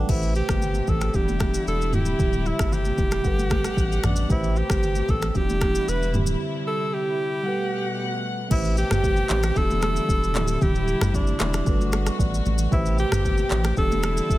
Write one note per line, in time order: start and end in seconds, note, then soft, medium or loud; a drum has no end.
0.00 0.10 G3 medium
0.00 0.11 D4 medium
0.00 0.10 F#4 medium
0.00 0.22 A4 medium
0.00 0.10 B4 medium
0.00 0.21 F#5 medium
0.00 0.11 G5 medium
0.00 0.11 A5 medium
0.06 0.42 A1 loud
0.06 1.13 B2 medium
0.06 1.13 C3 medium
0.06 1.11 A3 medium
0.06 0.36 E4 medium
0.06 1.12 G4 medium
0.06 1.13 G4 medium
0.06 1.12 B4 medium
0.06 kick loud
0.06 crash loud
0.06 low conga medium
0.06 shaker medium
0.11 1.13 C5 medium
0.23 shaker soft
0.35 0.90 G4 loud
0.35 shaker medium
0.49 0.81 G1 medium
0.49 finger snap medium
0.49 kick medium
0.49 cross-stick loud
0.49 high conga medium
0.49 shaker medium
0.62 low conga medium
0.62 shaker medium
0.74 high conga medium
0.74 shaker medium
0.87 1.09 A1 medium
0.87 1.16 A4 medium
0.87 kick medium
0.87 high conga medium
0.87 low conga medium
0.87 shaker soft
1.01 finger snap medium
1.01 cross-stick medium
1.01 high conga medium
1.01 shaker medium
1.13 1.58 E1 loud
1.13 1.92 D3 medium
1.13 1.92 E3 medium
1.13 3.23 G3 medium
1.13 1.93 B3 medium
1.13 1.93 D4 medium
1.13 3.23 E4 medium
1.13 1.67 G4 loud
1.13 1.94 G4 medium
1.13 kick medium
1.13 shaker medium
1.28 high conga medium
1.28 shaker medium
1.40 finger snap medium
1.40 kick loud
1.40 cross-stick loud
1.40 high conga medium
1.40 shaker medium
1.54 shaker medium
1.67 1.95 E1 medium
1.67 1.95 A4 loud
1.67 shaker medium
1.82 shaker medium
1.91 2.15 D1 loud
1.91 3.23 C3 medium
1.91 3.21 D3 medium
1.91 3.22 C4 medium
1.91 3.22 E4 medium
1.91 2.48 G4 medium
1.91 mid tom medium
1.91 high conga medium
1.91 low conga medium
1.91 shaker medium
1.96 2.01 F#4 medium
2.02 3.27 G4 medium
2.02 shaker loud
2.19 2.52 D1 loud
2.19 kick loud
2.19 low conga medium
2.19 shaker medium
2.33 shaker soft
2.46 2.75 E4 medium
2.46 shaker medium
2.59 2.92 G1 medium
2.59 finger snap medium
2.59 kick loud
2.59 cross-stick loud
2.59 high conga medium
2.59 shaker medium
2.72 4.06 G4 loud
2.72 low conga medium
2.72 shaker medium
2.85 high conga medium
2.85 shaker medium
2.98 3.20 E1 medium
2.98 kick loud
2.98 high conga medium
2.98 low conga medium
2.98 shaker soft
3.11 finger snap medium
3.11 cross-stick medium
3.11 high conga medium
3.11 shaker medium
3.22 3.68 G1 loud
3.22 4.29 B2 medium
3.22 4.27 G3 medium
3.22 4.29 A3 medium
3.22 4.28 A4 medium
3.22 4.27 F#5 medium
3.22 4.29 F#5 medium
3.22 kick medium
3.22 shaker medium
3.27 4.29 B4 medium
3.39 high conga medium
3.39 shaker medium
3.50 finger snap medium
3.50 kick medium
3.50 cross-stick loud
3.50 high conga medium
3.50 shaker medium
3.64 finger snap medium
3.64 cross-stick medium
3.64 shaker loud
3.77 3.99 A1 medium
3.77 kick loud
3.77 shaker medium
3.92 shaker medium
4.03 4.25 A1 loud
4.03 4.30 D4 medium
4.03 finger snap medium
4.03 cross-stick medium
4.03 mid tom loud
4.03 high conga medium
4.03 low conga medium
4.03 shaker medium
4.16 shaker loud
4.28 4.63 A1 loud
4.28 5.34 B2 medium
4.28 5.34 C3 medium
4.28 5.32 A3 medium
4.28 4.59 E4 medium
4.28 5.33 G4 medium
4.28 5.34 G4 medium
4.28 5.34 B4 medium
4.28 kick loud
4.28 low conga medium
4.28 shaker medium
4.32 5.34 C5 medium
4.43 shaker soft
4.56 5.12 G4 loud
4.56 shaker soft
4.70 5.02 G1 medium
4.70 finger snap medium
4.70 kick loud
4.70 cross-stick loud
4.70 high conga medium
4.70 shaker medium
4.83 low conga medium
4.83 shaker medium
4.95 high conga medium
4.95 shaker medium
5.08 5.31 A1 medium
5.08 5.29 A4 loud
5.08 kick medium
5.08 high conga medium
5.08 low conga medium
5.08 shaker soft
5.22 finger snap medium
5.22 cross-stick medium
5.22 high conga medium
5.22 shaker medium
5.29 5.38 A4 medium
5.34 5.79 E1 loud
5.34 6.13 D3 medium
5.34 6.14 E3 medium
5.34 7.44 G3 medium
5.34 6.14 B3 medium
5.34 6.14 D4 medium
5.34 7.44 E4 medium
5.34 5.42 F#4 medium
5.34 5.90 G4 loud
5.34 kick medium
5.34 shaker medium
5.43 6.15 G4 medium
5.49 high conga medium
5.49 shaker medium
5.61 finger snap medium
5.61 kick loud
5.61 cross-stick loud
5.61 high conga medium
5.61 shaker medium
5.75 shaker medium
5.88 6.16 E1 medium
5.88 6.14 B4 loud
5.88 shaker medium
6.03 shaker medium
6.12 6.36 D1 loud
6.12 7.44 C3 medium
6.12 7.42 D3 medium
6.12 7.43 C4 medium
6.12 7.43 E4 medium
6.12 mid tom medium
6.12 high conga medium
6.12 low conga medium
6.12 shaker medium
6.17 7.44 G4 medium
6.26 shaker loud
6.67 6.95 A4 loud
6.93 8.25 G4 loud
7.43 8.50 B2 medium
7.43 8.48 G3 medium
7.43 8.50 A3 medium
7.43 8.49 A4 medium
7.43 8.48 F#5 medium
7.43 8.50 F#5 medium
7.48 8.50 B4 medium
8.48 8.84 A1 loud
8.48 9.55 B2 medium
8.48 9.55 C3 medium
8.48 9.53 A3 medium
8.48 8.76 E4 loud
8.48 9.54 G4 medium
8.48 9.55 G4 medium
8.48 9.55 B4 medium
8.48 kick loud
8.48 crash loud
8.48 low conga medium
8.48 shaker medium
8.54 9.55 C5 medium
8.65 shaker medium
8.77 9.58 G4 loud
8.77 shaker medium
8.91 9.23 G1 medium
8.91 finger snap loud
8.91 cross-stick loud
8.91 mid tom loud
8.91 high conga medium
8.91 shaker medium
9.04 kick medium
9.04 low conga medium
9.04 shaker medium
9.16 high conga medium
9.16 shaker medium
9.29 9.52 A1 medium
9.29 clap loud
9.29 high conga medium
9.29 low conga medium
9.29 shaker medium
9.43 finger snap medium
9.43 cross-stick medium
9.43 high conga medium
9.43 shaker medium
9.55 10.00 E1 loud
9.55 10.34 D3 medium
9.55 10.35 E3 medium
9.55 10.34 G3 medium
9.55 10.35 B3 medium
9.55 10.35 D4 medium
9.55 10.34 E4 medium
9.55 9.63 F#4 medium
9.55 9.83 A4 loud
9.55 kick loud
9.55 shaker medium
9.64 10.39 G4 medium
9.71 high conga loud
9.71 shaker medium
9.82 10.64 A4 loud
9.82 finger snap medium
9.82 cross-stick loud
9.82 high conga medium
9.82 shaker medium
9.96 shaker loud
10.09 10.37 E1 loud
10.09 kick loud
10.09 shaker medium
10.24 shaker medium
10.33 10.57 D1 loud
10.33 11.66 C3 medium
10.33 11.63 D3 medium
10.33 11.66 G3 medium
10.33 11.64 C4 medium
10.33 11.65 E4 medium
10.33 clap loud
10.33 high conga medium
10.33 low conga medium
10.33 shaker medium
10.38 10.43 F#4 medium
10.44 11.69 G4 medium
10.44 shaker loud
10.61 10.95 D1 loud
10.61 11.16 G4 loud
10.61 kick loud
10.61 low conga medium
10.61 shaker medium
10.75 shaker medium
10.88 shaker medium
11.01 11.34 G1 medium
11.01 finger snap medium
11.01 cross-stick loud
11.01 mid tom loud
11.01 high conga medium
11.01 shaker medium
11.14 11.41 D4 medium
11.14 kick medium
11.14 low conga medium
11.14 shaker medium
11.27 high conga medium
11.27 shaker medium
11.40 11.62 E1 medium
11.40 12.16 D4 medium
11.40 finger snap medium
11.40 cross-stick loud
11.40 clap loud
11.40 high conga medium
11.40 low conga medium
11.40 shaker medium
11.53 finger snap medium
11.53 cross-stick medium
11.53 high conga medium
11.53 shaker medium
11.64 12.10 G1 medium
11.64 12.71 B2 medium
11.64 12.69 G3 medium
11.64 12.71 A3 medium
11.64 12.70 F#4 medium
11.64 12.71 F#4 medium
11.64 12.70 A4 medium
11.64 kick loud
11.64 shaker medium
11.69 12.71 B4 medium
11.81 high conga loud
11.81 shaker medium
11.92 finger snap medium
11.92 cross-stick loud
11.92 high conga medium
11.92 shaker medium
12.07 finger snap medium
12.07 cross-stick medium
12.07 shaker loud
12.19 12.41 A1 medium
12.19 12.68 D5 medium
12.19 kick loud
12.19 shaker medium
12.34 shaker medium
12.46 12.67 A1 medium
12.46 high conga medium
12.46 low conga medium
12.46 shaker medium
12.58 shaker loud
12.70 13.05 A1 loud
12.70 13.76 B2 medium
12.70 13.76 C3 medium
12.70 13.74 A3 medium
12.70 12.97 E4 medium
12.70 13.75 G4 medium
12.70 13.76 G4 medium
12.70 13.76 B4 medium
12.70 kick loud
12.70 low conga medium
12.70 shaker medium
12.75 13.76 C5 medium
12.86 shaker soft
12.98 13.74 G4 loud
12.98 shaker medium
13.12 13.44 G1 medium
13.12 finger snap medium
13.12 cross-stick loud
13.12 mid tom loud
13.12 high conga medium
13.12 shaker medium
13.25 kick medium
13.25 low conga medium
13.25 shaker medium
13.38 high conga medium
13.38 shaker medium
13.50 13.73 A1 medium
13.50 clap loud
13.50 high conga medium
13.50 low conga medium
13.50 shaker medium
13.64 finger snap medium
13.64 cross-stick medium
13.64 high conga medium
13.64 shaker medium
13.76 14.21 E1 loud
13.76 14.38 D3 medium
13.76 14.38 E3 medium
13.76 14.38 G3 medium
13.76 14.38 B3 medium
13.76 14.38 D4 medium
13.76 14.38 E4 medium
13.76 14.38 G4 medium
13.76 14.02 A4 loud
13.76 kick loud
13.76 shaker medium
13.92 high conga loud
13.92 shaker medium
14.03 14.38 A4 loud
14.03 finger snap medium
14.03 cross-stick loud
14.03 high conga medium
14.03 shaker medium
14.17 shaker medium
14.30 14.38 E1 loud
14.30 kick loud
14.30 shaker medium